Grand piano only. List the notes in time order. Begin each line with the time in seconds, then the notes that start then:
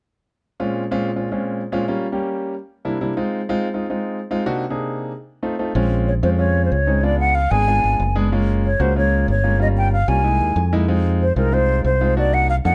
0.60 A#2 G#3 C4 C#4 F4
0.91 A#2 G#3 C4 C#4 F4
1.16 A#2 G#3 C4 C#4 F4
1.32 A#2 G#3 C4 C#4 F4
1.72 A#2 G#3 C4 C#4 F4
1.88 G3 A#3 C#4 F4
2.12 G3 A#3 C#4 G4
2.85 C3 G3 A#3 D4 E4
3.01 C3 G3 A#3 D4 E4
3.17 G#3 C4 D#4 F4
3.49 G#3 C4 D#4 F4
3.74 G#3 C4 D#4 F4
3.90 G#3 C4 D#4 F4
4.31 G#3 C4 D#4 F4
4.46 C3 A#3 D4 D#4 F#4
4.70 C3 A#3 D4 D#4 G#4
5.43 A3 C4 D#4 F4
5.59 A3 C4 D#4 F4
5.75 G#3 C4 C#4 F4
6.23 G#3 C4 C#4 F4
6.38 G#3 C4 C#4 F4
6.87 G#3 C4 C#4 D#4
7.03 G#3 B3 D4 F4
7.51 G#3 B3 D4 G#4
7.67 G#3 B3 D4 F4
8.15 G#3 B3 D4 G#4
8.32 G#3 A#3 C#4 F4
8.80 G#3 A#3 C#4 F#4
8.96 G#3 A#3 C#4 F4
9.44 G#3 A#3 C#4 F4
9.59 G3 A#3 C#4 F4
10.08 G3 A#3 C#4 F4
10.24 G#3 A#3 D#4 E4
10.57 G#5
10.73 G#3 A#3 D#4 E4 D#5
10.88 G#3 C4 D#4 F4
11.36 G#3 C4 D#4 F4
11.52 G#3 C4 D#4 F4
12.01 G#3 C4 D#4 F4
12.17 A#3 D4 D#4 F#4
12.65 A#3 D4 D#4 F4